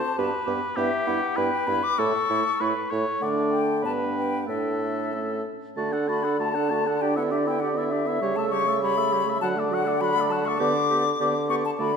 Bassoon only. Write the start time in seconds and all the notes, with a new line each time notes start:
0.18 G2
0.47 G2
0.77 G2
1.08 G2
1.38 G2
1.68 G2
1.99 A2
2.30 A2
2.61 A2
2.92 A2
3.22 D3
3.84 G2
4.48 A2
5.77 D3
8.21 C#3
9.43 D3
10.61 D3
11.21 D3
11.80 D3